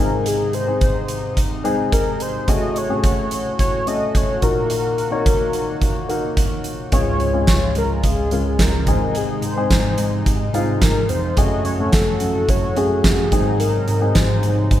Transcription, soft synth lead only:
Already playing: A#4
0.28 G#4
0.54 C5
0.83 C5
1.92 A#4
2.22 C5
2.49 D#5
2.78 C#5
3.60 C#5
3.88 D#5
4.17 C#5
4.44 A#4
6.93 C#5
7.49 C#5
7.78 A#4
8.05 G#4
8.62 A#4
9.17 G#4
9.45 C5
9.72 C5
10.83 A#4
11.10 C5
11.38 D#5
11.66 C#5
11.93 A4
12.50 C#5
12.78 G#4
13.60 A#4
14.16 C5

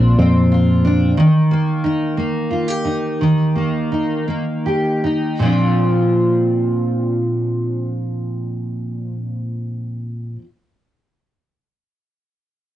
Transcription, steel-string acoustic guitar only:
Already playing: A#2 C4 D4 F4
0.19 C4
0.52 F4
0.85 D4
1.17 D#3
1.51 A#3
1.84 D#4
2.17 A#3
2.51 F4
2.68 G4
2.85 D#4
3.21 D#3
3.55 A#3
3.92 D#4
4.28 A#3
4.66 G4
5.04 D#4
5.39 A#2 F3
5.45 C4 D4
5.49 F4

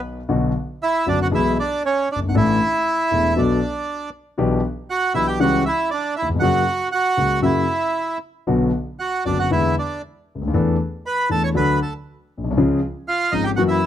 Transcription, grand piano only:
Already playing: B1 B2 D#3 F#3 B3 F#4
0.29 B1 B2 D3 F#3 B3 F#4
1.06 F#1 F#2 D3 F#3 B3 F#4
1.31 B1 B2 E3 G#3 B3 G#4
2.15 F#1
2.21 G1
2.29 G#1
2.35 A1 A2 E3 A3 D4 A4
3.11 E1 E2 E3 A3 D4 A4
3.36 B1 B2 F#3 B3 D4 A4
4.38 B1 B2 E3 B3 D4 G4
5.14 B1 B2 E3 B3 D4 G4
5.39 C#2 C#3 E3 G3 C#4 G4
6.22 D#2
6.29 E2
6.35 F2
6.41 F#2 C#3 F#3 A#3 F#4
7.17 C#2 C#3 F#3 A#3 F#4
7.42 F#2 C#3 F#3 A#3 F#4
8.47 B1 B2 D3 F#3 B3 F#4
9.25 F#1 F#2 D3 F#3 B3 F#4
9.50 E2 D3 E3 G#3 B3 E4
10.35 C#2
10.42 D2
10.47 D#2
10.54 E2 E3 A3 D4 A4
11.29 E2 E3 A3 D4 A4
11.54 D2 D3 F#3 A3 D4 A4
12.37 A#1
12.44 B1
12.51 C2
12.57 C#2 C#3 F3 G#3 C#4 G#4
13.32 G#1 G#2 F3 G#3 C#4 G#4
13.58 F#2 E3 F#3 A#3 C#4 F#4

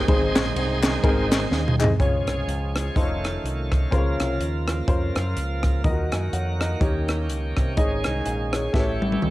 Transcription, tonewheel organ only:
Already playing: D#4 G#4 C5
0.84 D#3 G#3 C4
2.02 F3 G#3 C#4 G#4
2.98 D#3 A3 F4
3.91 C#3 F3 A#3
5.85 D#3 F#4
6.82 C#4 G4
7.79 G#3 C#4 G#4
8.74 E3 A3 C#4 G4

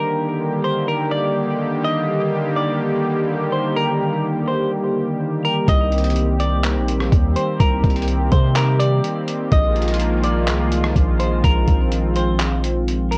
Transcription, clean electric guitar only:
Already playing: A#4
0.64 C5
0.88 A#4
1.11 D5
1.84 D#5
2.56 D5
3.52 C5
3.76 A#4
4.48 C5
5.45 A#4
5.69 D#5
6.40 D5
7.36 C5
7.60 A#4
8.32 C5
8.56 A#4
8.80 D5
9.52 D#5
10.24 D5
11.20 C5
11.44 A#4
12.16 C5
13.11 A#4

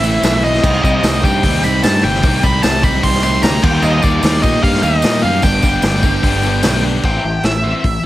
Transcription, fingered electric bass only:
Already playing: A1
0.23 B1
0.63 C2
0.84 C2
1.03 C2
1.24 G2
1.43 D#2
1.63 C2
1.84 G2
2.04 G1
2.23 C2
2.43 C2
2.64 C2
3.04 C2
3.43 D2
3.63 D#2
3.83 D#2
4.04 D#2
4.23 D#2
4.43 A#2
4.63 G2
4.83 D#2
5.04 A#2
5.24 F#2
5.43 G1
5.63 G1
5.84 G1
6.23 G1
6.64 B1
7.04 A1
7.24 A1
7.44 A1
7.84 A1

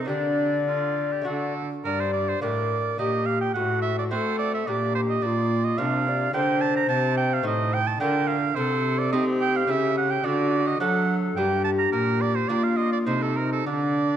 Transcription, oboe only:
0.08 D4
0.68 F4
1.12 G4
1.27 A4
1.85 A#4
2.00 C5
2.13 D5
2.29 C5
2.42 D5
2.99 D#5
3.26 F5
3.41 G5
3.54 F#5
3.82 E5
3.99 D5
4.11 C5
4.39 D5
4.55 E5
4.67 D5
4.95 C5
5.09 D#5
5.22 D5
5.64 D#5
5.78 F5
6.34 G5
6.61 A5
6.76 A#5
6.89 A5
7.17 G5
7.34 F5
7.47 D#5
7.74 G5
7.88 A5
8.01 G5
8.28 F5
8.55 C5
8.98 D5
9.12 D#5
9.41 G5
9.56 F5
9.71 E5
9.97 F#5
10.11 G5
10.25 D5
10.67 D#5
10.80 F#5
11.36 G5
11.64 A5
11.79 A#5
11.92 A#4
12.21 D5
12.35 C5
12.48 D5
12.63 F5
12.77 D#5
12.92 D5
13.06 C5
13.22 A4
13.36 A#4
13.53 A4
13.67 D5

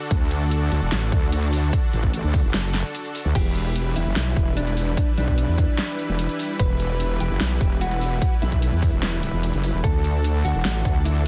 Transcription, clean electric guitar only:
3.35 G4
3.96 E4
4.57 D4
5.18 D4
6.60 B4
7.20 G4
7.81 F#4
8.42 E4
9.84 A4
10.45 F#4
11.05 E4

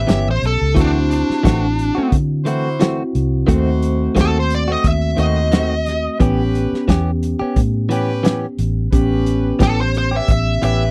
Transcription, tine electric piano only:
Already playing: B3 C#4 G4
0.75 C4 E4 F#4
2.80 C4 E4 F#4
3.48 A3 C4 F#4
6.19 B3 C#4 G4
8.92 B3 C#4 G4

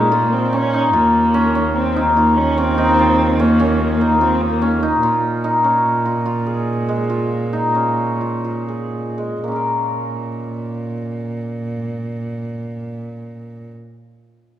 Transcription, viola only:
Already playing: G#3
0.12 A#3
0.33 C4
0.54 C#4
0.95 A#3
1.76 C4
2.17 A#3
2.37 C#4
2.58 C4
3.40 A#3
4.21 C4
4.41 A#3

